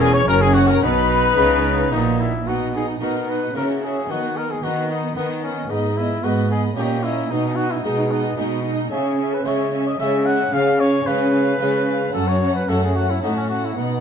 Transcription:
Already playing: double bass section E1, harpsichord E2 C#4 G#4, cello section E2, viola section C#4
0.00 trumpet G#4, violin section G#4 G#5
0.13 trumpet C#5, violin section C#5 C#6
0.27 double bass section F#1, harpsichord F#2 C#4 F#4, cello section F#2, viola section C#4, trumpet A#4, violin section A#4 A#5
0.41 trumpet G#4, violin section G#4 G#5
0.54 trumpet F#4, violin section F#4 F#5
0.68 trumpet A#4, violin section A#4 A#5
0.82 double bass section B1, cello section B2, harpsichord B2, viola section D#4, trumpet B4, violin section B4 B5
1.37 double bass section C#2, harpsichord C#3 B3 D#4 F#4, cello section C#3
1.91 double bass section A#1, harpsichord A#2 B3 D#4 F#4, cello section A#2, trumpet D#4
2.21 trumpet E4
2.46 cello section B2, harpsichord B2, viola section D#4, trumpet F#4, violin section D#5 F#5
2.74 viola section D#4, trumpet G#4, violin section D#5 F#5
3.00 cello section B2, harpsichord B2 B3 D#4 F#4, viola section D#4, trumpet A#4, violin section D#5 F#5
3.28 viola section D#4, trumpet B4, violin section D#5 F#5
3.55 cello section C#3, harpsichord C#3 A#3 E4 F#4, viola section C#4, trumpet A#4, violin section E5 F#5
3.81 viola section C#4, trumpet G#4, violin section E5 F#5
4.08 cello section D#3, harpsichord D#3, viola section B3, trumpet F#4, violin section D#5 F#5
4.35 viola section B3, trumpet A#4, violin section D#5 F#5
4.51 trumpet G#4
4.62 cello section D#3, harpsichord D#3 B3 D#4, viola section B3, trumpet F#4, violin section D#5 F#5
4.89 viola section B3, trumpet D#4, violin section D#5 F#5
5.16 harpsichord D#3 B3 D#4, cello section D#3, viola section B3, trumpet B3, violin section D#5 F#5
5.42 viola section B3, trumpet C#4, violin section D#5 F#5
5.69 harpsichord G#2, cello section G#2, viola section B3, trumpet D#4, violin section D#5 B5
5.96 viola section B3, trumpet E4, violin section D#5 B5
6.23 harpsichord G#2 B3 D#4, cello section G#2, viola section B3, trumpet F#4, violin section D#5 B5
6.50 viola section B3, trumpet G#4, violin section D#5 B5
6.76 harpsichord A#2 A#3 C#4 D#4, cello section A#2, viola section C#4, trumpet G4, violin section D#5 A#5
7.03 viola section C#4, trumpet E4, violin section D#5 A#5
7.30 harpsichord B2, cello section B2, viola section D#4, trumpet D#4, violin section D#5 G#5
7.56 viola section D#4, trumpet F#4, violin section D#5 G#5
7.71 trumpet E4
7.83 harpsichord B2 G#3 D#4, cello section B2, trumpet D#4, viola section D#4, violin section D#5 G#5
8.11 trumpet B3, viola section D#4, violin section D#5 G#5
8.37 harpsichord B2 G#3 D#4, cello section B2, viola section D#4, violin section D#5 G#5
8.65 viola section D#4, violin section D#5 G#5
8.91 harpsichord C#3, cello section C#3, viola section C#4, trumpet G#4, violin section E5 G#5
9.19 viola section C#4, violin section E5 G#5
9.33 trumpet B4
9.45 cello section C#3, harpsichord C#3 G#3 C#4 E4, viola section C#4, trumpet C#5, violin section E5 G#5
9.72 viola section C#4, violin section E5 G#5
9.87 trumpet D#5
9.99 cello section C#3, harpsichord C#3 G#3 C#4 E4, viola section C#4, violin section E5 G#5, trumpet E5
10.25 viola section C#4, violin section E5 G#5, trumpet F#5
10.52 harpsichord C#3, cello section C#3, viola section C#4, violin section F5 G#5, trumpet F5
10.79 viola section C#4, trumpet C#5, violin section F5 G#5
11.06 cello section C#3, harpsichord C#3 G#3 C#4 F4, viola section C#4, trumpet B4, violin section F5 G#5
11.33 viola section C#4, violin section F5 G#5
11.60 harpsichord C#3 G#3 C#4 F4, cello section C#3, viola section C#4, violin section F5 G#5
11.87 viola section C#4, violin section F5 G#5
12.12 harpsichord F#2, cello section F#2, viola section C#4, trumpet A4, violin section F#5 A5
12.28 trumpet C#5
12.40 viola section C#4, violin section F#5 A5
12.55 trumpet B4
12.68 cello section F#2, harpsichord F#2 A3 C#4 F#4, viola section C#4, trumpet A4, violin section F#5 A5
12.84 trumpet G#4
12.95 viola section C#4, trumpet F#4, violin section F#5 A5
13.10 trumpet E4
13.22 cello section A2, harpsichord A2 C#4 F#4, viola section C#4, trumpet D#4, violin section F#5 A5
13.37 trumpet C#4
13.49 viola section C#4, trumpet F#4, violin section F#5 A5
13.65 trumpet E4
13.77 cello section B2, harpsichord B2, viola section B3, trumpet D#4, violin section F#5

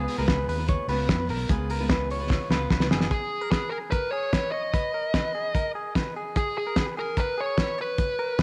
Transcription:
Already playing: steel-string acoustic guitar C#3 G#3 B3 F4 B4, clean electric guitar G#4
0.08 open hi-hat
0.18 fingered electric bass C#2, steel-string acoustic guitar C#3 G#3 B3 F4 B4, clean electric guitar A#4
0.28 clean electric guitar B4, kick, snare
0.48 fingered electric bass D#2, clean electric guitar B4, open hi-hat
0.58 steel-string acoustic guitar B3 F4 B4
0.68 clean electric guitar C#5, kick, closed hi-hat
0.88 fingered electric bass C#2, steel-string acoustic guitar C#3 G#3 B3 F4 B4, clean electric guitar B4, open hi-hat
1.09 fingered electric bass F2, clean electric guitar B4, kick, snare, closed hi-hat
1.18 steel-string acoustic guitar B3 F4 B4
1.29 fingered electric bass B1, clean electric guitar A#4, open hi-hat
1.49 fingered electric bass C#2, steel-string acoustic guitar C#3 G#3 B3 F4 B4, clean electric guitar G#4, kick, closed hi-hat
1.70 clean electric guitar A#4, open hi-hat
1.80 steel-string acoustic guitar C#3 G#3 B3 F4 B4
1.89 clean electric guitar B4, kick, snare, closed hi-hat
2.11 clean electric guitar C#5, open hi-hat
2.20 steel-string acoustic guitar B3 F4 B4
2.30 kick, snare
2.50 fingered electric bass C#2, steel-string acoustic guitar C#3 G#3 B3 F4 B4, clean electric guitar B4, snare
2.70 fingered electric bass C#2, clean electric guitar B4, kick, snare
2.80 steel-string acoustic guitar B3 F4 B4, snare
2.90 fingered electric bass F#1, clean electric guitar G#4, snare
3.01 snare
3.11 clean electric guitar G#4, lead electric guitar G#4, kick, closed hi-hat
3.41 clean electric guitar A#4
3.51 lead electric guitar G#4, clean electric guitar B4, kick, snare, closed hi-hat
3.70 clean electric guitar G#4, lead electric guitar A#4
3.91 clean electric guitar A#4, lead electric guitar B4, kick, closed hi-hat
4.11 clean electric guitar G#4, lead electric guitar C#5
4.33 clean electric guitar B4, kick, snare, closed hi-hat
4.52 clean electric guitar C#5, lead electric guitar D#5
4.74 clean electric guitar B4, kick, closed hi-hat
4.94 clean electric guitar A#4
5.14 clean electric guitar B4, kick, snare, closed hi-hat
5.35 clean electric guitar G#4
5.55 clean electric guitar A#4, kick, closed hi-hat
5.75 clean electric guitar G#4
5.95 clean electric guitar B4, kick, snare, closed hi-hat
6.16 clean electric guitar G#4
6.36 clean electric guitar G#4, lead electric guitar G#4, kick, closed hi-hat
6.58 lead electric guitar G#4
6.67 clean electric guitar A#4
6.76 lead electric guitar G#4, clean electric guitar B4, kick, snare, closed hi-hat
6.97 clean electric guitar G#4, lead electric guitar A#4
7.17 clean electric guitar A#4, lead electric guitar B4, kick, closed hi-hat
7.38 clean electric guitar G#4, lead electric guitar C#5
7.58 clean electric guitar B4, kick, snare, closed hi-hat
7.78 lead electric guitar B4, clean electric guitar C#5
7.98 clean electric guitar B4, kick, closed hi-hat
8.19 clean electric guitar A#4
8.39 clean electric guitar B4, kick, snare, closed hi-hat

